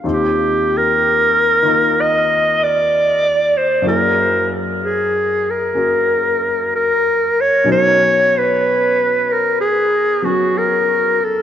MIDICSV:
0, 0, Header, 1, 3, 480
1, 0, Start_track
1, 0, Tempo, 952381
1, 21, Time_signature, 4, 2, 24, 8
1, 5756, End_track
2, 0, Start_track
2, 0, Title_t, "Clarinet"
2, 0, Program_c, 0, 71
2, 65, Note_on_c, 0, 67, 80
2, 389, Note_on_c, 0, 70, 98
2, 397, Note_off_c, 0, 67, 0
2, 1013, Note_on_c, 0, 75, 91
2, 1020, Note_off_c, 0, 70, 0
2, 1328, Note_on_c, 0, 74, 96
2, 1336, Note_off_c, 0, 75, 0
2, 1800, Note_on_c, 0, 72, 80
2, 1807, Note_off_c, 0, 74, 0
2, 1944, Note_off_c, 0, 72, 0
2, 1955, Note_on_c, 0, 70, 87
2, 2319, Note_off_c, 0, 70, 0
2, 2439, Note_on_c, 0, 68, 72
2, 2774, Note_on_c, 0, 70, 74
2, 2782, Note_off_c, 0, 68, 0
2, 3395, Note_off_c, 0, 70, 0
2, 3404, Note_on_c, 0, 70, 89
2, 3734, Note_on_c, 0, 73, 83
2, 3741, Note_off_c, 0, 70, 0
2, 3874, Note_off_c, 0, 73, 0
2, 3890, Note_on_c, 0, 73, 104
2, 4224, Note_on_c, 0, 71, 94
2, 4231, Note_off_c, 0, 73, 0
2, 4699, Note_on_c, 0, 70, 80
2, 4706, Note_off_c, 0, 71, 0
2, 4838, Note_off_c, 0, 70, 0
2, 4842, Note_on_c, 0, 68, 86
2, 5165, Note_on_c, 0, 66, 77
2, 5173, Note_off_c, 0, 68, 0
2, 5331, Note_on_c, 0, 70, 90
2, 5339, Note_off_c, 0, 66, 0
2, 5665, Note_on_c, 0, 69, 79
2, 5673, Note_off_c, 0, 70, 0
2, 5756, Note_off_c, 0, 69, 0
2, 5756, End_track
3, 0, Start_track
3, 0, Title_t, "Grand piano"
3, 0, Program_c, 1, 0
3, 0, Control_c, 1, 64, 127
3, 18, Note_on_c, 1, 39, 46
3, 24, Note_on_c, 1, 60, 44
3, 24, Note_on_c, 1, 65, 45
3, 25, Note_on_c, 1, 51, 41
3, 28, Control_c, 1, 64, 0
3, 30, Note_on_c, 1, 67, 52
3, 112, Control_c, 1, 64, 127
3, 812, Note_off_c, 1, 51, 0
3, 819, Note_on_c, 1, 51, 43
3, 826, Note_off_c, 1, 65, 0
3, 827, Note_on_c, 1, 58, 37
3, 834, Note_on_c, 1, 65, 42
3, 835, Note_on_c, 1, 63, 35
3, 1923, Note_on_c, 1, 42, 56
3, 1932, Note_off_c, 1, 58, 0
3, 1933, Note_off_c, 1, 51, 0
3, 1933, Note_on_c, 1, 54, 48
3, 1935, Note_off_c, 1, 39, 0
3, 1938, Note_off_c, 1, 60, 0
3, 1940, Note_on_c, 1, 58, 49
3, 1941, Note_off_c, 1, 63, 0
3, 1941, Note_off_c, 1, 65, 0
3, 1941, Note_off_c, 1, 67, 0
3, 1941, Control_c, 1, 64, 0
3, 1944, Note_on_c, 1, 64, 47
3, 1950, Note_on_c, 1, 68, 58
3, 2046, Control_c, 1, 64, 127
3, 2883, Note_off_c, 1, 58, 0
3, 2890, Note_on_c, 1, 58, 37
3, 2897, Note_on_c, 1, 61, 31
3, 2901, Note_on_c, 1, 66, 35
3, 2904, Note_on_c, 1, 70, 40
3, 3849, Note_off_c, 1, 54, 0
3, 3851, Note_on_c, 1, 47, 51
3, 3853, Note_off_c, 1, 61, 0
3, 3856, Note_off_c, 1, 42, 0
3, 3857, Note_on_c, 1, 54, 47
3, 3859, Note_off_c, 1, 58, 0
3, 3861, Note_on_c, 1, 61, 52
3, 3864, Note_off_c, 1, 66, 0
3, 3866, Note_off_c, 1, 70, 0
3, 3867, Note_off_c, 1, 64, 0
3, 3868, Control_c, 1, 64, 0
3, 3868, Note_on_c, 1, 63, 48
3, 3869, Note_off_c, 1, 68, 0
3, 3948, Control_c, 1, 64, 127
3, 5144, Note_off_c, 1, 54, 0
3, 5151, Note_on_c, 1, 54, 42
3, 5155, Note_off_c, 1, 61, 0
3, 5155, Note_on_c, 1, 59, 36
3, 5163, Note_on_c, 1, 61, 35
3, 5166, Note_on_c, 1, 66, 41
3, 5756, Note_off_c, 1, 47, 0
3, 5756, Note_off_c, 1, 54, 0
3, 5756, Note_off_c, 1, 59, 0
3, 5756, Note_off_c, 1, 61, 0
3, 5756, Note_off_c, 1, 63, 0
3, 5756, Note_off_c, 1, 66, 0
3, 5756, End_track
0, 0, End_of_file